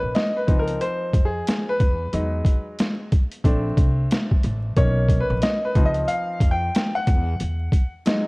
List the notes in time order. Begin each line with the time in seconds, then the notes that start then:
Already playing: A#3 C#4 D#4 B4
0.02 A#1
0.15 D#5, snare, closed hi-hat
0.37 B4
0.47 C#2 F3 C4 D#4, kick, closed hi-hat
0.59 A#4
0.68 closed hi-hat
0.81 C5, closed hi-hat
1.13 F2, kick, closed hi-hat
1.25 G#4
1.47 snare, closed hi-hat
1.69 B4
1.80 E2, kick, closed hi-hat
2.13 E2 F#3 G#3 D#4, closed hi-hat
2.45 kick, closed hi-hat
2.79 snare, closed hi-hat
3.12 kick, closed hi-hat
3.31 closed hi-hat
3.44 A#1 A3 C4 D4, kick, closed hi-hat
3.77 C2, kick, closed hi-hat
4.11 snare, closed hi-hat
4.31 kick
4.43 A1, closed hi-hat
4.76 B1 A#3 C#4 D#4 C#5, kick, closed hi-hat
5.09 kick, closed hi-hat
5.20 B4
5.30 A#1
5.42 D#5, snare, closed hi-hat
5.65 B4
5.75 C#2 F3 C4 D#4, kick, closed hi-hat
5.86 D#5
5.95 closed hi-hat
6.08 F5, closed hi-hat
6.41 F2, kick, closed hi-hat
6.51 G5
6.75 snare, closed hi-hat
6.95 F#5
7.07 E2, kick, closed hi-hat
7.40 E2, closed hi-hat
7.72 kick, closed hi-hat
8.06 F#3 G#3 D#4, snare, closed hi-hat